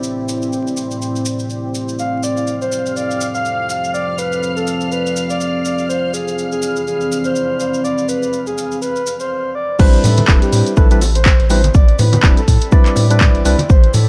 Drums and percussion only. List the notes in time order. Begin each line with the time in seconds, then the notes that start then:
0.03 cabasa
0.28 cabasa
0.42 cabasa
0.53 cabasa
0.67 cabasa
0.77 cabasa
0.91 cabasa
1.02 cabasa
1.16 cabasa
1.25 cabasa
1.39 cabasa
1.50 cabasa
1.75 cabasa
1.89 cabasa
1.99 cabasa
2.23 cabasa
2.37 cabasa
2.47 cabasa
2.62 cabasa
2.72 cabasa
2.86 cabasa
2.97 cabasa
3.11 cabasa
3.21 cabasa
3.35 cabasa
3.45 cabasa
3.70 cabasa
3.84 cabasa
3.94 cabasa
4.18 cabasa
4.32 cabasa
4.43 cabasa
4.57 cabasa
4.67 cabasa
4.81 cabasa
4.92 cabasa
5.06 cabasa
5.16 cabasa
5.30 cabasa
5.40 cabasa
5.65 cabasa
5.78 cabasa
5.90 cabasa
6.14 cabasa
6.28 cabasa
6.38 cabasa
6.52 cabasa
6.62 cabasa
6.76 cabasa
6.87 cabasa
7.01 cabasa
7.12 cabasa
7.24 cabasa
7.35 cabasa
7.60 cabasa
7.74 cabasa
7.85 cabasa
7.98 cabasa
8.09 cabasa
8.23 cabasa
8.33 cabasa
8.47 cabasa
8.58 cabasa
8.72 cabasa
8.82 cabasa
8.96 cabasa
9.07 cabasa
9.20 cabasa
9.79 kick, crash, cabasa
9.93 closed hi-hat
10.04 open hi-hat, low conga, cabasa
10.17 closed hi-hat, high conga, cabasa
10.28 kick, clap, cabasa
10.42 closed hi-hat, cabasa
10.53 open hi-hat, cabasa
10.66 closed hi-hat, cabasa
10.77 kick, cabasa
10.91 closed hi-hat, cabasa
11.01 open hi-hat, high bongo, cabasa
11.15 closed hi-hat, cabasa
11.25 kick, clap, cabasa
11.40 closed hi-hat
11.50 open hi-hat, high bongo, cabasa
11.64 closed hi-hat, high conga, cabasa
11.74 kick, cabasa
11.88 closed hi-hat
11.99 open hi-hat, low conga, cabasa
12.13 closed hi-hat, high bongo, high conga, cabasa
12.23 kick, clap, cabasa
12.37 closed hi-hat, cabasa
12.48 kick, open hi-hat, cabasa
12.61 closed hi-hat, cabasa
12.72 kick, cabasa
12.86 clap, closed hi-hat, cabasa
12.96 open hi-hat, high bongo, cabasa
13.10 closed hi-hat, cabasa
13.21 kick, clap, cabasa
13.35 closed hi-hat
13.45 open hi-hat, cabasa
13.59 closed hi-hat, high bongo, high conga, cabasa
13.70 kick, cabasa
13.84 closed hi-hat
13.94 open hi-hat, low conga, cabasa